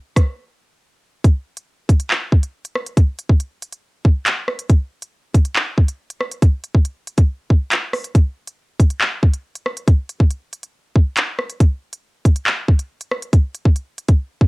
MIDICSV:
0, 0, Header, 1, 2, 480
1, 0, Start_track
1, 0, Tempo, 431655
1, 1382, Time_signature, 4, 2, 24, 8
1, 16096, End_track
2, 0, Start_track
2, 0, Title_t, "Drums"
2, 182, Note_on_c, 9, 37, 91
2, 183, Note_on_c, 9, 36, 100
2, 187, Note_on_c, 9, 42, 94
2, 293, Note_off_c, 9, 37, 0
2, 294, Note_off_c, 9, 36, 0
2, 298, Note_off_c, 9, 42, 0
2, 1383, Note_on_c, 9, 36, 127
2, 1384, Note_on_c, 9, 42, 89
2, 1494, Note_off_c, 9, 36, 0
2, 1495, Note_off_c, 9, 42, 0
2, 1745, Note_on_c, 9, 42, 76
2, 1856, Note_off_c, 9, 42, 0
2, 2103, Note_on_c, 9, 36, 104
2, 2108, Note_on_c, 9, 42, 99
2, 2214, Note_off_c, 9, 36, 0
2, 2219, Note_off_c, 9, 42, 0
2, 2222, Note_on_c, 9, 42, 80
2, 2334, Note_off_c, 9, 42, 0
2, 2343, Note_on_c, 9, 39, 105
2, 2454, Note_off_c, 9, 39, 0
2, 2583, Note_on_c, 9, 36, 94
2, 2694, Note_off_c, 9, 36, 0
2, 2704, Note_on_c, 9, 42, 75
2, 2815, Note_off_c, 9, 42, 0
2, 2946, Note_on_c, 9, 42, 95
2, 3057, Note_off_c, 9, 42, 0
2, 3063, Note_on_c, 9, 37, 95
2, 3174, Note_off_c, 9, 37, 0
2, 3185, Note_on_c, 9, 42, 77
2, 3296, Note_off_c, 9, 42, 0
2, 3303, Note_on_c, 9, 36, 119
2, 3305, Note_on_c, 9, 42, 91
2, 3414, Note_off_c, 9, 36, 0
2, 3416, Note_off_c, 9, 42, 0
2, 3544, Note_on_c, 9, 42, 87
2, 3655, Note_off_c, 9, 42, 0
2, 3663, Note_on_c, 9, 36, 94
2, 3774, Note_off_c, 9, 36, 0
2, 3781, Note_on_c, 9, 42, 76
2, 3892, Note_off_c, 9, 42, 0
2, 4028, Note_on_c, 9, 42, 96
2, 4139, Note_off_c, 9, 42, 0
2, 4142, Note_on_c, 9, 42, 73
2, 4253, Note_off_c, 9, 42, 0
2, 4503, Note_on_c, 9, 36, 97
2, 4614, Note_off_c, 9, 36, 0
2, 4743, Note_on_c, 9, 39, 126
2, 4743, Note_on_c, 9, 42, 83
2, 4854, Note_off_c, 9, 39, 0
2, 4854, Note_off_c, 9, 42, 0
2, 4982, Note_on_c, 9, 37, 92
2, 5093, Note_off_c, 9, 37, 0
2, 5104, Note_on_c, 9, 42, 84
2, 5215, Note_off_c, 9, 42, 0
2, 5222, Note_on_c, 9, 36, 120
2, 5222, Note_on_c, 9, 42, 93
2, 5333, Note_off_c, 9, 36, 0
2, 5334, Note_off_c, 9, 42, 0
2, 5584, Note_on_c, 9, 42, 79
2, 5695, Note_off_c, 9, 42, 0
2, 5942, Note_on_c, 9, 36, 105
2, 5945, Note_on_c, 9, 42, 98
2, 6053, Note_off_c, 9, 36, 0
2, 6056, Note_off_c, 9, 42, 0
2, 6060, Note_on_c, 9, 42, 79
2, 6171, Note_off_c, 9, 42, 0
2, 6181, Note_on_c, 9, 39, 107
2, 6292, Note_off_c, 9, 39, 0
2, 6423, Note_on_c, 9, 36, 95
2, 6534, Note_off_c, 9, 36, 0
2, 6541, Note_on_c, 9, 42, 78
2, 6653, Note_off_c, 9, 42, 0
2, 6784, Note_on_c, 9, 42, 95
2, 6896, Note_off_c, 9, 42, 0
2, 6901, Note_on_c, 9, 37, 90
2, 7012, Note_off_c, 9, 37, 0
2, 7022, Note_on_c, 9, 42, 77
2, 7134, Note_off_c, 9, 42, 0
2, 7142, Note_on_c, 9, 36, 120
2, 7142, Note_on_c, 9, 42, 92
2, 7253, Note_off_c, 9, 36, 0
2, 7253, Note_off_c, 9, 42, 0
2, 7381, Note_on_c, 9, 42, 90
2, 7493, Note_off_c, 9, 42, 0
2, 7502, Note_on_c, 9, 36, 92
2, 7613, Note_off_c, 9, 36, 0
2, 7618, Note_on_c, 9, 42, 78
2, 7729, Note_off_c, 9, 42, 0
2, 7865, Note_on_c, 9, 42, 97
2, 7976, Note_off_c, 9, 42, 0
2, 7981, Note_on_c, 9, 42, 73
2, 7983, Note_on_c, 9, 36, 102
2, 8092, Note_off_c, 9, 42, 0
2, 8094, Note_off_c, 9, 36, 0
2, 8343, Note_on_c, 9, 36, 94
2, 8454, Note_off_c, 9, 36, 0
2, 8581, Note_on_c, 9, 42, 85
2, 8582, Note_on_c, 9, 39, 125
2, 8693, Note_off_c, 9, 39, 0
2, 8693, Note_off_c, 9, 42, 0
2, 8822, Note_on_c, 9, 37, 93
2, 8825, Note_on_c, 9, 46, 53
2, 8933, Note_off_c, 9, 37, 0
2, 8936, Note_off_c, 9, 46, 0
2, 8944, Note_on_c, 9, 42, 87
2, 9055, Note_off_c, 9, 42, 0
2, 9063, Note_on_c, 9, 36, 123
2, 9063, Note_on_c, 9, 42, 90
2, 9174, Note_off_c, 9, 36, 0
2, 9174, Note_off_c, 9, 42, 0
2, 9425, Note_on_c, 9, 42, 79
2, 9536, Note_off_c, 9, 42, 0
2, 9783, Note_on_c, 9, 36, 103
2, 9787, Note_on_c, 9, 42, 99
2, 9894, Note_off_c, 9, 36, 0
2, 9898, Note_off_c, 9, 42, 0
2, 9902, Note_on_c, 9, 42, 78
2, 10013, Note_off_c, 9, 42, 0
2, 10021, Note_on_c, 9, 39, 108
2, 10132, Note_off_c, 9, 39, 0
2, 10263, Note_on_c, 9, 36, 95
2, 10375, Note_off_c, 9, 36, 0
2, 10383, Note_on_c, 9, 42, 76
2, 10494, Note_off_c, 9, 42, 0
2, 10625, Note_on_c, 9, 42, 92
2, 10736, Note_off_c, 9, 42, 0
2, 10742, Note_on_c, 9, 37, 92
2, 10853, Note_off_c, 9, 37, 0
2, 10864, Note_on_c, 9, 42, 82
2, 10975, Note_off_c, 9, 42, 0
2, 10982, Note_on_c, 9, 36, 125
2, 10983, Note_on_c, 9, 42, 90
2, 11094, Note_off_c, 9, 36, 0
2, 11094, Note_off_c, 9, 42, 0
2, 11223, Note_on_c, 9, 42, 88
2, 11334, Note_off_c, 9, 42, 0
2, 11343, Note_on_c, 9, 36, 95
2, 11454, Note_off_c, 9, 36, 0
2, 11460, Note_on_c, 9, 42, 76
2, 11571, Note_off_c, 9, 42, 0
2, 11707, Note_on_c, 9, 42, 100
2, 11819, Note_off_c, 9, 42, 0
2, 11822, Note_on_c, 9, 42, 73
2, 11933, Note_off_c, 9, 42, 0
2, 12183, Note_on_c, 9, 36, 97
2, 12294, Note_off_c, 9, 36, 0
2, 12422, Note_on_c, 9, 39, 127
2, 12422, Note_on_c, 9, 42, 81
2, 12533, Note_off_c, 9, 42, 0
2, 12534, Note_off_c, 9, 39, 0
2, 12662, Note_on_c, 9, 37, 90
2, 12773, Note_off_c, 9, 37, 0
2, 12783, Note_on_c, 9, 42, 86
2, 12895, Note_off_c, 9, 42, 0
2, 12902, Note_on_c, 9, 36, 122
2, 12902, Note_on_c, 9, 42, 91
2, 13013, Note_off_c, 9, 36, 0
2, 13014, Note_off_c, 9, 42, 0
2, 13264, Note_on_c, 9, 42, 81
2, 13375, Note_off_c, 9, 42, 0
2, 13622, Note_on_c, 9, 36, 101
2, 13626, Note_on_c, 9, 42, 96
2, 13733, Note_off_c, 9, 36, 0
2, 13737, Note_off_c, 9, 42, 0
2, 13742, Note_on_c, 9, 42, 82
2, 13853, Note_off_c, 9, 42, 0
2, 13861, Note_on_c, 9, 39, 108
2, 13972, Note_off_c, 9, 39, 0
2, 14103, Note_on_c, 9, 36, 97
2, 14214, Note_off_c, 9, 36, 0
2, 14223, Note_on_c, 9, 42, 79
2, 14334, Note_off_c, 9, 42, 0
2, 14465, Note_on_c, 9, 42, 94
2, 14576, Note_off_c, 9, 42, 0
2, 14583, Note_on_c, 9, 37, 92
2, 14694, Note_off_c, 9, 37, 0
2, 14704, Note_on_c, 9, 42, 78
2, 14815, Note_off_c, 9, 42, 0
2, 14823, Note_on_c, 9, 36, 120
2, 14823, Note_on_c, 9, 42, 92
2, 14934, Note_off_c, 9, 36, 0
2, 14934, Note_off_c, 9, 42, 0
2, 15063, Note_on_c, 9, 42, 86
2, 15174, Note_off_c, 9, 42, 0
2, 15183, Note_on_c, 9, 36, 93
2, 15294, Note_off_c, 9, 36, 0
2, 15299, Note_on_c, 9, 42, 74
2, 15411, Note_off_c, 9, 42, 0
2, 15547, Note_on_c, 9, 42, 99
2, 15658, Note_off_c, 9, 42, 0
2, 15661, Note_on_c, 9, 42, 75
2, 15663, Note_on_c, 9, 36, 101
2, 15772, Note_off_c, 9, 42, 0
2, 15775, Note_off_c, 9, 36, 0
2, 16023, Note_on_c, 9, 36, 96
2, 16096, Note_off_c, 9, 36, 0
2, 16096, End_track
0, 0, End_of_file